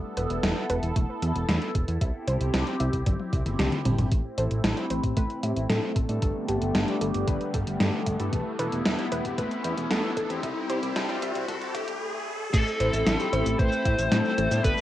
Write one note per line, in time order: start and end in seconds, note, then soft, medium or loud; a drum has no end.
0.00 1.97 B3 medium
0.00 4.08 E4 medium
0.00 1.99 A4 medium
0.17 0.27 E1 medium
0.17 0.42 B4 loud
0.17 closed hi-hat medium
0.30 0.40 E1 medium
0.30 closed hi-hat soft
0.43 0.53 E1 loud
0.43 0.68 E4 medium
0.43 snare loud
0.43 closed hi-hat medium
0.70 0.80 E1 medium
0.70 0.88 B4 loud
0.70 closed hi-hat medium
0.83 0.93 E1 medium
0.83 closed hi-hat soft
0.96 1.06 E1 loud
0.96 1.21 A3 loud
0.96 kick loud
0.96 closed hi-hat medium
1.22 1.32 E2 medium
1.22 1.40 E5 medium
1.22 closed hi-hat medium
1.35 1.45 E1 medium
1.35 closed hi-hat soft
1.48 1.58 E2 loud
1.48 1.67 A3 medium
1.48 snare loud
1.48 closed hi-hat medium
1.62 closed hi-hat soft
1.75 1.85 E1 loud
1.75 2.00 A4 medium
1.75 kick loud
1.75 closed hi-hat medium
1.88 1.98 E2 medium
1.88 closed hi-hat medium
2.01 2.11 C2 loud
2.01 4.10 C4 medium
2.01 4.10 G4 medium
2.01 2.19 E5 medium
2.01 kick loud
2.01 closed hi-hat medium
2.27 2.37 C2 medium
2.27 2.52 C5 loud
2.27 closed hi-hat medium
2.41 2.51 C2 medium
2.41 closed hi-hat medium
2.54 2.64 C2 loud
2.54 2.79 E4 medium
2.54 snare loud
2.54 closed hi-hat medium
2.67 closed hi-hat soft
2.80 2.90 C2 medium
2.80 3.05 E5 medium
2.80 closed hi-hat medium
2.93 3.03 C2 medium
2.93 kick medium
2.93 closed hi-hat medium
3.06 3.16 G1 loud
3.06 3.31 G3 loud
3.06 kick loud
3.06 closed hi-hat medium
3.06 high tom medium
3.20 high tom medium
3.33 3.43 C2 loud
3.33 3.51 E5 medium
3.33 kick loud
3.33 closed hi-hat medium
3.46 3.56 G1 medium
3.46 closed hi-hat medium
3.46 mid tom medium
3.59 3.69 C2 loud
3.59 3.77 G3 medium
3.59 snare loud
3.59 closed hi-hat medium
3.59 mid tom medium
3.72 closed hi-hat soft
3.72 mid tom medium
3.85 3.95 G1 medium
3.85 3.96 C4 medium
3.85 closed hi-hat medium
3.85 mid tom loud
3.98 4.09 G1 medium
3.98 closed hi-hat medium
3.98 mid tom medium
4.12 4.22 A1 loud
4.12 4.23 A3 medium
4.12 10.39 A3 medium
4.12 6.20 C4 medium
4.12 6.20 E4 medium
4.12 kick loud
4.12 closed hi-hat medium
4.12 riser medium
4.38 4.48 A1 medium
4.38 4.74 C4 medium
4.38 4.74 E4 medium
4.38 4.74 A4 loud
4.38 4.63 C5 loud
4.38 closed hi-hat medium
4.51 4.61 A1 medium
4.51 closed hi-hat medium
4.64 4.74 A1 loud
4.64 4.89 E4 medium
4.64 snare loud
4.64 closed hi-hat medium
4.77 5.14 C4 loud
4.77 5.14 E4 medium
4.77 5.14 G4 loud
4.77 closed hi-hat soft
4.91 5.01 A1 medium
4.91 5.09 C5 loud
4.91 closed hi-hat medium
5.04 5.14 A1 medium
5.04 kick medium
5.04 closed hi-hat medium
5.17 5.27 A1 loud
5.17 5.42 A3 loud
5.17 5.40 C4 loud
5.17 5.40 E4 medium
5.17 5.40 B4 loud
5.17 kick loud
5.17 closed hi-hat medium
5.30 closed hi-hat soft
5.43 5.53 A2 medium
5.43 5.52 C4 medium
5.43 5.52 E4 medium
5.43 5.52 G4 medium
5.43 5.62 E5 medium
5.43 closed hi-hat medium
5.56 5.66 A1 medium
5.56 closed hi-hat medium
5.70 5.80 A2 loud
5.70 5.88 A3 medium
5.70 6.06 C4 medium
5.70 6.06 E4 medium
5.70 6.06 A4 loud
5.70 snare loud
5.70 closed hi-hat medium
5.96 6.06 A1 medium
5.96 6.21 A4 medium
5.96 kick loud
5.96 closed hi-hat medium
6.09 6.19 A2 medium
6.09 6.45 G3 loud
6.09 6.45 A3 medium
6.09 6.45 B3 medium
6.09 6.45 D4 medium
6.09 6.45 A4 loud
6.09 closed hi-hat medium
6.22 6.32 G1 loud
6.22 8.31 D3 medium
6.22 8.31 G3 medium
6.22 10.39 B3 medium
6.22 8.31 G4 medium
6.22 6.41 A4 medium
6.22 kick loud
6.22 closed hi-hat medium
6.49 6.58 G1 medium
6.49 6.85 G3 medium
6.49 6.85 A3 medium
6.49 6.85 B3 medium
6.49 6.85 D4 medium
6.49 6.74 G4 loud
6.49 6.85 A4 loud
6.49 closed hi-hat medium
6.62 6.72 G1 medium
6.62 closed hi-hat medium
6.75 6.85 G1 loud
6.75 7.00 B3 medium
6.75 snare loud
6.75 closed hi-hat medium
6.88 7.24 G3 loud
6.88 7.24 A3 medium
6.88 7.24 B3 medium
6.88 7.24 D4 medium
6.88 7.24 G4 loud
6.88 closed hi-hat soft
7.01 7.11 G1 medium
7.01 7.26 A4 medium
7.01 closed hi-hat medium
7.14 7.24 G1 medium
7.14 closed hi-hat medium
7.27 7.37 G1 loud
7.27 7.51 G3 loud
7.27 7.52 G3 loud
7.27 7.51 A3 medium
7.27 7.51 B3 medium
7.27 7.51 D4 medium
7.27 7.51 B4 loud
7.27 kick loud
7.27 closed hi-hat medium
7.41 closed hi-hat soft
7.54 7.64 G2 loud
7.54 7.63 G3 medium
7.54 7.63 A3 medium
7.54 7.63 B3 medium
7.54 7.63 D4 medium
7.54 7.63 G4 medium
7.54 7.72 A4 medium
7.54 kick loud
7.54 closed hi-hat medium
7.67 7.77 G1 medium
7.67 closed hi-hat medium
7.80 7.90 G2 loud
7.80 8.16 G3 medium
7.80 7.98 G3 medium
7.80 8.16 A3 medium
7.80 8.16 B3 medium
7.80 8.16 D4 medium
7.80 8.16 A4 loud
7.80 snare loud
7.80 closed hi-hat medium
8.06 8.16 G1 loud
8.06 8.17 A3 medium
8.06 kick medium
8.06 closed hi-hat medium
8.20 8.30 G2 medium
8.20 8.56 B3 medium
8.20 8.56 E4 medium
8.20 8.56 A4 loud
8.20 closed hi-hat medium
8.33 8.43 E1 loud
8.33 8.44 A3 medium
8.33 11.98 E4 medium
8.33 kick loud
8.33 closed hi-hat medium
8.59 8.69 E1 medium
8.59 8.95 B3 medium
8.59 8.95 E4 medium
8.59 8.95 A4 loud
8.59 8.84 B4 loud
8.59 closed hi-hat medium
8.72 8.82 E1 medium
8.72 closed hi-hat medium
8.85 8.95 E1 loud
8.85 9.10 E4 medium
8.85 snare loud
8.85 closed hi-hat medium
8.98 9.35 B3 loud
8.98 9.35 E4 medium
8.98 9.35 G4 loud
8.98 closed hi-hat soft
9.12 9.22 E1 medium
9.12 9.30 B4 loud
9.12 closed hi-hat medium
9.25 9.35 E1 medium
9.25 kick medium
9.25 closed hi-hat medium
9.38 9.48 E1 loud
9.38 9.63 A3 loud
9.38 9.61 B3 loud
9.38 9.61 E4 medium
9.38 9.61 B4 loud
9.38 kick loud
9.38 closed hi-hat medium
9.51 closed hi-hat soft
9.64 9.74 E2 loud
9.64 9.73 B3 medium
9.64 9.73 E4 medium
9.64 9.73 G4 medium
9.64 9.83 E5 medium
9.64 closed hi-hat medium
9.77 9.87 E1 medium
9.77 closed hi-hat medium
9.90 10.01 E2 loud
9.90 10.09 A3 medium
9.90 10.27 B3 medium
9.90 10.27 E4 medium
9.90 10.27 A4 loud
9.90 snare loud
9.90 closed hi-hat medium
10.17 10.27 E1 medium
10.17 10.42 A4 medium
10.17 kick loud
10.17 closed hi-hat medium
10.30 10.40 E2 medium
10.30 10.66 C4 loud
10.30 10.66 E4 medium
10.30 10.66 G4 loud
10.30 closed hi-hat medium
10.43 10.53 C2 loud
10.43 12.00 G3 medium
10.43 12.00 C4 medium
10.43 10.62 E5 medium
10.43 kick loud
10.43 closed hi-hat medium
10.69 10.80 C2 medium
10.69 11.06 C4 medium
10.69 11.06 E4 medium
10.69 11.06 G4 loud
10.69 10.95 C5 loud
10.69 closed hi-hat medium
10.83 10.93 C2 medium
10.83 closed hi-hat medium
10.96 11.06 C2 loud
10.96 11.21 E4 medium
10.96 snare loud
10.96 closed hi-hat medium
11.09 11.45 C4 loud
11.09 11.45 E4 medium
11.09 11.45 G4 loud
11.09 closed hi-hat soft
11.22 11.32 C2 medium
11.22 11.47 E5 medium
11.22 closed hi-hat medium
11.35 11.45 C2 medium
11.35 closed hi-hat medium
11.48 11.59 C2 loud
11.48 11.73 G3 loud
11.48 11.72 C4 loud
11.48 11.72 E4 medium
11.48 11.72 A4 loud
11.48 kick loud
11.48 closed hi-hat medium
11.48 swell medium
11.62 closed hi-hat soft
11.75 11.85 G1 medium
11.75 11.84 C4 medium
11.75 11.84 E4 medium
11.75 11.84 G4 medium
11.75 11.93 E5 medium
11.75 kick loud
11.75 closed hi-hat medium
11.88 11.98 C2 medium
11.88 closed hi-hat medium
12.54 12.64 A1 loud
12.54 12.65 A3 medium
12.54 14.81 A3 medium
12.54 14.62 C4 medium
12.54 14.62 E4 medium
12.54 13.62 A4 loud
12.54 kick loud
12.54 closed hi-hat medium
12.54 crash loud
12.54 shaker medium
12.67 shaker soft
12.80 12.90 A1 loud
12.80 13.16 C4 medium
12.80 13.16 E4 medium
12.80 13.16 A4 loud
12.80 13.05 C5 loud
12.80 closed hi-hat medium
12.93 13.03 A1 medium
12.93 closed hi-hat medium
12.93 shaker medium
13.06 13.16 A1 loud
13.06 13.31 E4 medium
13.06 snare loud
13.06 closed hi-hat medium
13.06 shaker medium
13.19 13.56 C4 loud
13.19 13.56 E4 medium
13.19 13.56 G4 loud
13.19 closed hi-hat soft
13.19 shaker soft
13.33 13.43 A1 medium
13.33 13.51 C5 loud
13.33 closed hi-hat medium
13.46 13.56 A1 medium
13.46 closed hi-hat medium
13.46 shaker medium
13.59 13.69 A1 loud
13.59 13.84 A3 loud
13.59 13.82 C4 loud
13.59 13.82 E4 medium
13.59 13.82 B4 loud
13.59 14.64 C5 loud
13.59 kick loud
13.59 closed hi-hat medium
13.59 shaker medium
13.72 shaker soft
13.85 13.95 A2 loud
13.85 13.94 C4 medium
13.85 13.94 E4 medium
13.85 13.94 G4 medium
13.85 14.04 E5 medium
13.85 kick loud
13.85 closed hi-hat medium
13.99 14.08 A1 medium
13.99 closed hi-hat medium
13.99 shaker medium
14.12 14.22 A2 loud
14.12 14.30 A3 medium
14.12 14.48 C4 medium
14.12 14.48 E4 medium
14.12 14.48 A4 loud
14.12 snare loud
14.12 closed hi-hat medium
14.12 shaker medium
14.25 shaker soft
14.38 14.48 A1 loud
14.38 14.63 A4 medium
14.38 closed hi-hat medium
14.51 14.61 A2 medium
14.51 14.81 G3 loud
14.51 14.81 A3 medium
14.51 14.81 B3 medium
14.51 14.81 D4 medium
14.51 14.81 A4 loud
14.51 closed hi-hat medium
14.51 shaker medium
14.64 14.74 G1 loud
14.64 14.81 D3 medium
14.64 14.81 G3 medium
14.64 14.81 B3 medium
14.64 14.81 G4 medium
14.64 14.81 A4 medium
14.64 14.81 B4 loud
14.64 kick loud
14.64 closed hi-hat medium
14.64 shaker medium
14.77 shaker soft